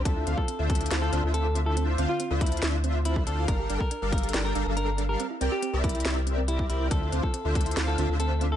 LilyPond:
<<
  \new Staff \with { instrumentName = "Clean electric guitar" } { \time 4/4 \key d \minor \tempo 4 = 140 a'8 r16 a'8 r16 a'8 r16 a'8 r16 a'8 r16 a'16~ | a'16 r8 f'8 r16 e'8 r4 e'8 a'8 | bes'8 r16 bes'8 r16 bes'8 r16 bes'8 r16 bes'8 r16 bes'16~ | bes'16 r8 g'8 r16 e'8 r4 e'8 e'8 |
a'8 r16 a'8 r16 a'8 r16 a'8 r16 a'8 r16 a'16 | }
  \new Staff \with { instrumentName = "Analog polysynth" } { \time 4/4 \key d \minor <d d' f' c'' e''>8 <d d' f' c'' f''>16 r8 <d d' f' c'' e''>8. <d d' f' c'' f''>8 <d d' f' c'' e''>16 <d d' f' c'' e''>4~ <d d' f' c'' e''>16~ | <d d' f' c'' e''>8 <d d' f' c'' f''>16 r8 <d d' f' c'' e''>8. <d d' f' c'' e''>4. <d d' f' c'' f''>8 | <g d' a' bes' f''>8 <g d' a' bes' g''>16 r8 <g d' a' bes' f''>8. <g d' a' bes' g''>8 <g d' a' bes' f''>16 <g d' a' bes' f''>4~ <g d' a' bes' f''>16 | r8 <c' g' bes' d'' g''>16 r8 <c' g' bes' d'' e''>8. <c' g' bes' d'' e''>4. <c' g' bes' d'' g''>8 |
<d f' c'' e''>8 <d d' f' c'' f''>16 r8 <d d' f' c'' e''>8. <d d' f' c'' f''>8 <d d' f' c'' e''>16 <d d' f' c'' e''>4~ <d d' f' c'' e''>16 | }
  \new Staff \with { instrumentName = "Synth arpeggio sound" } { \time 4/4 \key d \minor c'16 e'16 c'16 f'16 c'16 a'16 c'16 e'16 c'16 e'16 c'16 f'16 c'16 a'16 c'16 e'16 | c'16 e'16 c'16 f'16 c'16 a'16 c'16 e'16 c'16 e'16 c'16 f'16 c'16 a'16 c'16 e'16 | d'16 g'16 d'16 a'16 d'16 bes'16 d'16 g'16 d'16 g'16 d'16 a'16 d'16 bes'16 d'16 g'16 | c'16 e'16 c'16 g'16 c'16 bes'16 c'16 e'16 c'16 e'16 c'16 c'16 g'16 e'16 e'16 e'16 |
c'16 e'16 c'16 f'16 c'16 a'16 c'16 e'16 c'16 e'16 c'16 f'16 c'16 a'16 c'16 e'16 | }
  \new Staff \with { instrumentName = "Sub bass" } { \clef bass \time 4/4 \key d \minor d,8 d,16 r8 d,8. d,8 d,16 d,4~ d,16~ | d,8 d,16 r8 d,8. d,4. d,8 | g,,8 g,,16 r8 g,,8. g,,8 g,,16 g,,4~ g,,16 | r8 c,16 r8 c,8. c,4. c,8 |
d,8 d,16 r8 d,8. d,8 d,16 d,4~ d,16 | }
  \new DrumStaff \with { instrumentName = "Drums" } \drummode { \time 4/4 <hh bd>8 hh16 bd16 hh8 <hh bd>32 hh32 hh32 hh32 <hh sn>8 hh8 hh8 hh8 | hh8 hh8 hh8 <hh bd>32 hh32 hh32 hh32 <hh sn>8 hh8 hh16 bd16 hh8 | <hh bd>8 hh16 bd16 hh8 <hh bd>32 hh32 hh32 hh32 <hh sn>8 hh8 hh8 hh8 | hh8 hh8 hh8 <hh bd>32 hh32 hh32 hh32 <hh sn>8 hh8 hh16 bd16 hh8 |
<hh bd>8 hh16 bd16 hh8 <hh bd>32 hh32 hh32 hh32 <hh sn>8 hh8 hh8 hh8 | }
>>